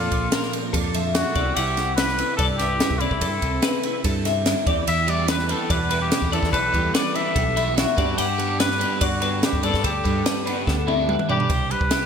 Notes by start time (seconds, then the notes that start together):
Already playing: A#2 D4 F4 A4
0.12 A#1 D4, kick, ride
0.32 F3 A#4, snare, ride
0.43 snare
0.53 ride
0.73 F2 D4 A4, kick, ride
0.94 F3 E5, ride
1.14 D4 F#4, snare, ride
1.35 C2 C3 E4 D5, kick, ride
1.55 C2 E4 G4 F#5, ride
1.77 C4, snare, ride
1.96 B4, snare, ride
2.09 snare
2.19 E4, ride
2.37 C2 G2 A4 D5, kick, ride
2.58 E4 G4 B4, snare, ride
2.80 E4, snare, ride
2.91 C2, kick
2.99 C3 C4 E4 D5, ride
3.11 C2, kick
3.21 G2 C4 A4, kick, ride
3.42 C2 C4, kick, ride
3.62 B4, snare, ride
3.83 E4, ride
4.04 G2 A4, kick, ride
4.25 C3 E5, snare, ride
4.46 D3, snare, ride
4.67 E2 E3 G4 D5, kick, ride
4.87 E2 E4 E5, ride
5.07 G3 B3 E4 G4 B4 D5, ride
5.28 B4, snare, ride
5.39 snare
5.49 B3 D4 E4 G4 A4 B4, ride
5.70 E2 B2 B4 D5, kick, ride
5.90 B3 E4 G4 B4, ride
6.01 G4
6.12 D4, snare, ride
6.22 E2 E4, kick
6.31 E3 B3 E4 G4 A4 B4 D5, ride
6.43 E2, kick, snare
6.53 B1 E4 A4 B4, kick, ride
6.73 E2 G3 B3 E4 G4 B4, kick, ride
6.94 B4 D5, snare, ride
7.15 B3 D4 E4 G4 B4 E5, ride
7.35 B1 B2 A4, kick, ride
7.56 B3 E4 G4 B4 E5, ride
7.77 E4 F#4, snare, ride
7.97 G2 B3 D4 G4 B4 D5, kick, ride
8.18 G2 D4 G4 F#5, ride
8.38 G3 B3 D4 G4 B4, ride
8.60 B4, snare, ride
8.71 snare
8.79 B3 D4 G4 B4, ride
9.01 G2 D3 F#4 D5, kick, ride
9.21 B3 D4 G4 B4, ride
9.43 D4 G4, snare, ride
9.53 G2, kick
9.63 G2 B3 D4 G4 A4 B4 D5, ride
9.74 G2, kick, snare
9.84 D2 D4 G4 A4, kick, ride
10.04 G2 G3 B3 D4 G4 B4, kick, ride
10.26 B4, snare, ride
10.46 B3 D4 G4 B4, ride
10.67 D2 D3 A4, kick, snare
10.88 B3 D4 G4 B4 E5, high tom
11.09 B4, mid tom
11.19 mid tom
11.29 G2 B3 D4 G4 B4 D5, floor tom
11.40 floor tom
11.50 C2 C3 C5, kick, ride
11.71 G3 B4, ride
11.81 C2, kick
11.91 E4 G4, snare, ride